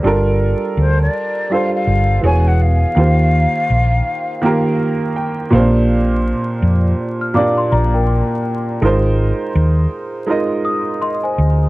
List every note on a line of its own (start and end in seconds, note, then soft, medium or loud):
0.03 0.53 G1 medium
0.03 1.06 G3 medium
0.03 1.06 D4 medium
0.03 1.07 F4 medium
0.03 1.07 A4 medium
0.07 1.08 A#4 loud
0.77 1.07 D2 medium
0.77 0.99 C5 medium
1.02 1.54 D5 medium
1.50 2.23 G3 medium
1.50 2.24 D4 medium
1.50 2.24 F4 medium
1.50 2.25 A4 medium
1.50 1.74 F5 loud
1.54 2.25 C5 medium
1.75 2.21 F5 loud
1.87 2.17 G1 medium
2.21 2.84 E1 loud
2.21 2.84 E3 medium
2.21 2.85 B3 medium
2.21 2.85 F#4 medium
2.21 2.86 G#4 medium
2.26 2.86 C#5 medium
2.26 2.49 G#5 loud
2.48 2.63 F#5 loud
2.62 4.80 F5 loud
2.95 3.45 D#2 loud
2.95 3.98 D#3 medium
2.95 3.99 A#3 medium
2.95 3.99 F4 medium
2.95 4.00 G4 medium
2.99 4.00 C5 medium
3.70 4.00 A#1 medium
4.42 5.45 D#3 medium
4.42 5.45 A#3 medium
4.42 5.46 F4 medium
4.42 5.46 G4 medium
4.46 5.47 A#4 loud
5.16 5.50 G5 medium
5.50 6.32 A#1 loud
5.50 6.70 A#2 loud
5.50 6.71 A#3 medium
5.50 5.61 C4 medium
5.50 6.72 G4 medium
5.50 5.87 F5 medium
5.55 6.72 C5 loud
5.59 6.75 D4 medium
6.62 6.93 F2 medium
7.21 7.35 F6 medium
7.34 8.37 A#2 medium
7.34 8.38 A#3 medium
7.34 8.38 D4 medium
7.34 8.39 G4 medium
7.34 7.57 F5 medium
7.34 7.57 D6 medium
7.38 8.39 D5 loud
7.58 7.71 C6 medium
7.72 8.21 A#1 medium
7.72 7.94 D5 medium
7.72 7.93 A#5 medium
7.94 8.78 A#4 medium
7.94 8.78 G5 medium
8.82 9.31 G#1 loud
8.82 9.84 G#3 medium
8.82 9.85 D#4 medium
8.82 9.85 F4 medium
8.82 9.86 A#4 medium
8.86 9.86 C5 loud
9.55 9.85 D#2 medium
10.26 11.30 G#3 medium
10.26 11.30 D#4 medium
10.26 11.31 F4 medium
10.26 11.31 A#4 medium
10.31 11.32 D#5 medium
10.65 11.00 D#6 medium
11.02 11.23 D#5 medium
11.02 11.23 C6 medium
11.24 11.69 C5 medium
11.24 11.69 G#5 medium
11.38 11.68 D2 medium